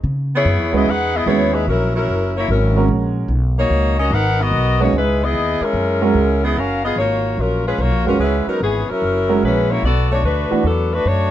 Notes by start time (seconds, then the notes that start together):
0.04 C#3
0.35 B3 E4 G#4 C#5
0.45 F#2
0.59 E2
0.73 C#2 G#3 B3 C#4 E4 F#4 G#4 B4 D#5
0.86 E2 D#4 G#4 B4 F#5
1.14 B3 E4 G#4 D#5
1.26 D#2 G#3 B3 C#4 E4 F#4 G#4 B4 C#5
1.53 G#3 D#4 E4 B4
1.67 A#1 F#3 C#4 E4 A#4
1.95 F#3 C#4 E4 A#4
2.07 F#1
2.37 A#3 E4 F#4 C#5
2.48 G#1 F#3 C#4 E4 A#4
2.76 G#3 C#4 F#4 A#4
2.88 A#1
3.28 B1
3.59 A#3 D#4 F#4 C#5
3.70 C#2
3.99 C#4 F#4 A#4 D#5
4.10 G#1 D#4 A#4 B4 F#5
4.40 B3 F#4 A#4 D#5
4.51 B1
4.80 G#3 A#3 C#4 D#4 F#4 B4 C#5
4.93 C#2 G#3 D#4 E4 B4
5.22 B3 E4 G#4 D#5
5.33 D#2
5.61 G#3 C#4 E4 A#4, muted upright bass stroke
5.73 F#2
6.02 G#3 C#4 F#4 A#4
6.14 C#2
6.43 B3 E4 G#4 D#5
6.56 F#1 C#4 F#4 A#4 F5
6.84 B3 F4 G#4 D#5
6.96 G#1 A#3 F4 F#4 C#5
7.37 A#1 F#3 C#4 F4 A#4
7.66 G#3 C#4 F4 B4
7.78 B1 A#3 F4 F#4 C#5
7.91 A#1
8.06 F#1 F#3 G#3 C#4 F4 F#4 A#4 B4
8.18 C#2 G#3 C#4 E4 B4
8.47 F#3 B3 D#4 A#4, muted upright bass stroke
8.61 G#1 E3 B3 C#4 G#4
8.89 F#3 C#4 E4 A#4, muted upright bass stroke
9.02 F#1
9.29 G#3 C#4 F#4 A#4
9.43 A#1 G#3 C#4 E4 B4
9.70 A#3 E4 F#4 C#5
9.83 B1 B3 F#4 A4 D5
10.11 A3 D4 F#4 C#5
10.23 D2 A3 D4 F#4 B4
10.51 E3 A3 D4 F#4, muted upright bass stroke
10.64 E2 F#3 B3 D4 A4
10.93 A3 D4 F#4 B4
11.05 F#2 A3 D4 F#4 C#5